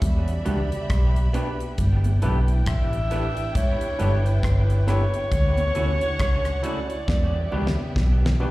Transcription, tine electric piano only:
0.45 D4 F#4 G4 B4
1.16 G4 B4
1.34 D4 F#4 G4 B4
2.22 D4 E4 A4 B4
3.11 D4 E4 A4 B4
3.36 A4 B4
3.99 D4 E4 A4 B4
4.69 A4 B4
4.87 D4 E4 A4 B4
5.75 E4 F#4 A4 C#5
6.62 E4 F#4 A4 C#5
6.89 A4 C#5
7.51 D4 F#4 G4 B4
8.22 G4 B4
8.40 D4 F#4 G4 B4

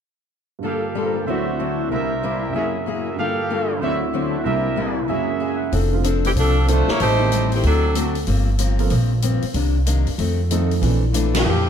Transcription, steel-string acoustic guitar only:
0.63 G3 A#3 F4 A4
0.95 G3 A#3 F4 A4
1.27 D3 F#3 C4 E4
1.59 D3 F#3 C4 E4
1.91 C3 G3 A#3 E4
2.23 C3 G3 A#3 E4
2.54 F#3 A#3 E4 G#4
2.86 F#3 A#3 E4 G#4
3.18 G3 A#3 F4 A4
3.50 G3 A#3 F4 A4
3.82 D3 F#3 C4 E4
4.13 D3 F#3 C4 E4
4.45 C3 G3 A#3 E4
4.76 C3 G3 A#3 E4
5.08 F#3 A#3 E4 G#4
5.40 F#3 A#3 E4 G#4
5.71 F3 C4 D4 A4
6.03 F3 C4 D4 A4
6.35 F3 C4 D4 A4
6.68 F3 C4 D4 A4
7.00 A2 G3 C4 D#4
7.31 A2 G3 C4 D#4
7.63 D3 A3 C4 F#4
7.95 D3 A3 C4 F#4
8.26 G2 F3 A#3 C4
8.58 G2 F3 A#3 C4
8.90 G2 F3 A#3 C4
9.22 G2 F3 A#3 C4
9.54 C3 D#3 A#3 D4
9.86 C3 D#3 A#3 D4
10.18 F2 D#3 A3 C4
10.50 F2 D#3 A3 C4
10.82 A#2 E3 A3 D4
11.13 A#2 E3 A3 D4
11.45 A#2 E3 A3 D4

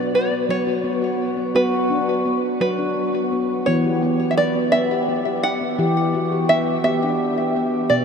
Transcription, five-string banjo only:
Already playing: B4
0.15 D5
0.50 C#5
1.56 B4
2.61 B4
3.66 C#5
4.31 E5
4.37 D5
4.72 E5
5.43 F#5
6.49 E5
6.84 E5
7.90 D5

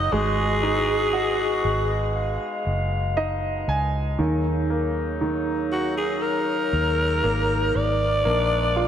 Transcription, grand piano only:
Already playing: F#4
0.12 G#3
0.63 D#4
1.13 F#4
3.17 D#4 D#5
3.69 G#5
4.19 D#3
4.70 A#3
5.21 D#3
7.23 A#3
8.25 A#3
8.76 F4

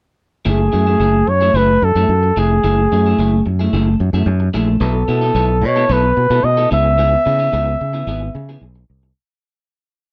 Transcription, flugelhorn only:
0.48 G#4
1.29 C#5
1.57 B4
1.84 A4
2.39 G#4
4.83 A4
5.66 C#5
5.93 B4
6.44 D#5
6.72 E5

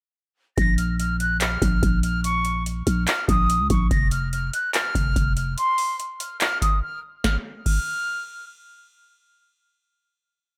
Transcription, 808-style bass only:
0.58 A#1
1.62 A#1
1.83 A#1
2.87 A#1
3.28 A#1
3.60 C#2
3.70 A#1
3.91 F1
4.95 F1
5.16 F1

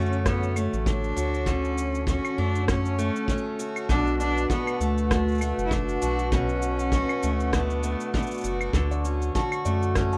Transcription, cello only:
Already playing: C#4
0.25 B3
0.56 A3
0.86 D4
1.47 C#4
2.08 C#4
2.38 D4
2.69 C#4
3.89 D4
4.20 D4
4.50 B3
4.81 A3
5.66 E4
5.73 D4
6.33 C#4
7.47 C#4
7.54 B3
8.14 B3

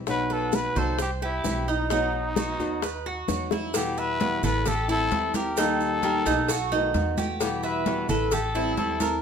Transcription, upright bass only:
Already playing: B1
0.76 C2
1.45 B1
2.59 D#2
3.28 E2
4.43 A1
5.12 D#2
6.26 B1
6.94 E2
8.09 A1
8.77 D#2

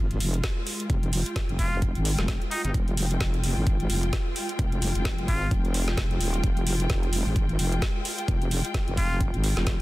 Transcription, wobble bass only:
Already playing: G#1
0.20 F1
0.90 F1
1.49 F1
1.95 G#1
2.18 F1
2.65 G1
2.74 F1
3.21 F1
3.57 G#1
3.90 F1
4.59 F1
4.95 F1
5.28 G#1
5.51 F1
5.97 F1
6.21 D#1
6.44 F1
6.90 F1
7.26 G#1
7.59 F1
8.28 F1
8.88 F1
9.34 G#1
9.57 F1

